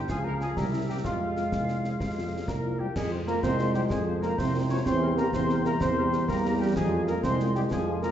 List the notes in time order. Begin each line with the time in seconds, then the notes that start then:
0.09 C#2 F3 F4 G#4 F5 G#5, concert bass drum, snare
0.24 F3 G#3 F4 A#4 A#5
0.40 F3 G#3 F4 G#4 G#5, snare
0.57 C2 G3 G4 A#4 E5 A#5, concert bass drum, snare
0.72 G3 C4 E4
0.88 G3 C4 E4 G4 G5
1.04 F2 G#3 F4 G#4 F5, concert bass drum, snare
1.20 G#3 C4 F4
1.36 G#3 C4 F4, snare
1.52 C2, concert bass drum, snare
1.68 G#3 C4 F4, snare
1.84 G#3 C4 F4, snare
2.00 F2, concert bass drum, snare
2.17 G#3 C4 F4
2.33 G#3 C4 F4
2.47 C2 A#3 A#4 A#5, concert bass drum, snare
2.64 G#3 C4 F4
2.79 G3 G#3 C4 F4 G4 G5
2.95 F2 G#3 G#4 G#5, concert bass drum, snare, crash
3.11 G#3 C4 F4 C5
3.27 G#3 A#3 C4 F4 A#4 C5 A#5, snare
3.42 C2 G#3 C4 C5 C6, concert bass drum, snare
3.59 G#3 C4 F4 C5, snare
3.74 G3 G#3 C4 F4 G4 C5 G5, snare
3.90 F2 F3 G#3 G#4 G#5, concert bass drum, snare
4.06 G#3 C4 F4 C5
4.22 G#3 A#3 C4 F4 A#4 C5 A#5, snare
4.37 C2 C3 C4 C5 C6, concert bass drum, snare
4.55 G#3 C4 F4 C5
4.69 G#3 C4 C#4 F4 C5 C#5 C#6
4.85 E2 E3 C4 C5 C6, concert bass drum, snare
5.01 G3 C4 G4 A#4
5.17 G3 A#3 C4 G4 A#4 A#5, snare
5.33 E2 C3 C4 C5 C6, concert bass drum, snare
5.49 G3 C4 G4 A#4, snare
5.64 G3 A#3 C4 G4 A#4 A#5, snare
5.81 E2 C4 C5 C6, concert bass drum, snare
5.97 G3 C4 G4 A#4
6.12 G3 C4 G4 A#4, snare
6.28 E2 G3 A#3 A#4 A#5, concert bass drum, snare
6.44 G3 C4 G4 A#4
6.59 G3 C4 G4 A#4 G5
6.76 F2 F3 G#3 G#4 G#5, concert bass drum, snare, crash
6.92 G#3 C4 F4 G#4
7.07 G#3 A#3 C4 F4 G#4 A#4 A#5, snare
7.23 C2 G#3 C4 C5 C6, concert bass drum, snare
7.40 G#3 C4 F4 G#4, snare
7.55 G3 G#3 C4 F4 G4 G#4 G5, snare
7.71 F2 F3 G#3 G#4 G#5, concert bass drum, snare
7.87 G#3 C4 F4 G#4
8.01 G#3 A#3 C4 F4 G#4 A#4 A#5, snare